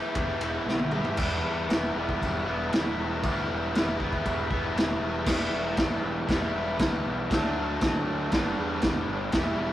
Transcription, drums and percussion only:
0.15 kick, ride
0.41 ride
0.68 snare
0.79 high tom
0.91 mid tom
1.05 floor tom
1.17 kick, crash
1.70 snare, crash
2.09 kick
2.22 kick, crash
2.73 snare, crash
3.23 kick, crash
3.75 snare, crash
4.00 kick
4.13 kick
4.26 kick, crash
4.51 kick
4.77 snare, crash
5.26 kick, snare, crash
5.77 kick, snare, crash
6.29 kick, snare, crash
6.79 kick, snare, crash
7.31 kick, snare, crash
7.81 kick, snare, crash
8.32 kick, snare, crash
8.82 kick, snare, crash
9.32 kick, snare, crash

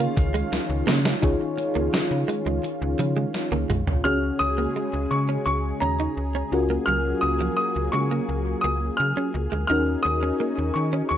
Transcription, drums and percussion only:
0.00 closed hi-hat
0.17 kick, closed hi-hat
0.35 closed hi-hat
0.53 snare, closed hi-hat
0.88 snare, open hi-hat
1.05 snare
1.23 kick, closed hi-hat
1.58 closed hi-hat
1.94 snare, closed hi-hat
2.29 closed hi-hat
2.64 closed hi-hat
2.99 closed hi-hat
3.34 snare, closed hi-hat
3.52 high tom
3.70 closed hi-hat, mid tom
3.87 floor tom

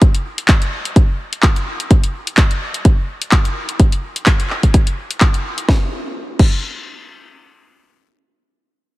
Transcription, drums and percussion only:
0.02 kick, closed hi-hat
0.15 closed hi-hat
0.38 closed hi-hat
0.48 kick, clap, closed hi-hat
0.62 closed hi-hat
0.85 closed hi-hat
0.96 kick, closed hi-hat
1.33 closed hi-hat
1.43 kick, clap, closed hi-hat
1.56 closed hi-hat
1.80 closed hi-hat
1.91 kick, closed hi-hat
2.04 closed hi-hat
2.27 closed hi-hat
2.37 kick, clap, closed hi-hat
2.51 closed hi-hat
2.74 closed hi-hat
2.85 kick, closed hi-hat
3.22 closed hi-hat
3.32 kick, clap, closed hi-hat
3.45 closed hi-hat
3.69 closed hi-hat
3.80 kick, closed hi-hat
3.92 closed hi-hat
4.16 closed hi-hat
4.26 kick, clap, closed hi-hat
4.40 closed hi-hat
4.50 clap
4.63 kick, closed hi-hat
4.74 kick, closed hi-hat
4.87 closed hi-hat
5.11 closed hi-hat
5.21 kick, clap, closed hi-hat
5.34 closed hi-hat
5.58 closed hi-hat
5.69 kick, snare
6.39 kick, crash

